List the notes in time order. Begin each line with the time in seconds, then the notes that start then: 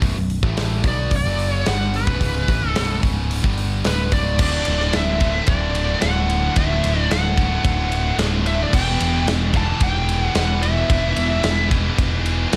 0.02 B0 B1 F#2, kick, open hi-hat
0.16 B0 B1 F#2
0.30 open hi-hat
0.43 A1 A2 E3 A3, kick
0.57 snare, open hi-hat
0.84 B1 B2 F#3 B3, kick, open hi-hat
0.88 D5
1.11 B0 B1 F#2, kick, open hi-hat
1.16 D5
1.26 F#1 F#2 C#3 F#3
1.39 open hi-hat
1.51 C#5
1.66 G1 G2 D3 G3 F#5, snare, open hi-hat
1.81 snare
1.94 B4, open hi-hat
2.07 B0 B1 F#2, kick
2.20 C#1 C#2 G#2 C#3, kick, open hi-hat
2.48 A1 A2 E3, kick, open hi-hat
2.62 C#1 C#2 G#2
2.68 A4
2.76 B0 B1 F#2 B2, snare, open hi-hat
3.01 C#1 C#2 G#2 C#3, kick, open hi-hat
3.31 open hi-hat
3.43 G1 G2 D3 G3, kick
3.58 open hi-hat
3.85 D1 D2 A2 D3 B4, snare, open hi-hat
4.11 C#1 C#2 G#2 C#3 D5, kick, open hi-hat
4.39 D1 D2 A2 D3 F#3 A3 D4 D5, kick, crash
4.65 D1, ride
4.80 snare
4.93 D1 E5, snare, ride
5.20 D2 A2 D3, kick, ride
5.47 D1 D5, kick, ride
5.75 ride
6.01 D1 D2 A2 D3 F#5, snare, ride
6.30 ride
6.55 D1 D2 A2 E5, kick, ride
6.59 D3 F#3 A3 D4
6.84 D1, ride
7.01 D5
7.11 D1 F#5, snare, ride
7.37 D2 A2 D3, kick, ride
7.64 D1, kick, ride
7.92 ride
8.18 D1 D2 A2, snare, ride
8.23 D3
8.46 E5, ride
8.62 D5
8.73 E1 E2 B2 E3 G3 B3 E4 G5, kick, crash
9.00 E1, ride
9.26 E1, snare, ride
9.54 E3 A5, kick, ride
9.58 E2 B2
9.80 E1 G5, kick, ride
10.09 ride
10.23 F#5
10.35 E1 E2 B2 E3 F#5, snare, ride
10.63 E5, ride
10.90 E1 E2 B2 E3 G3 B3 E4, kick, ride
11.16 E1, ride
11.43 E1, snare, ride
11.71 B2 E3, kick, ride
11.75 E2
11.98 E1, kick, ride
12.26 ride
12.53 C#1 E2, snare, ride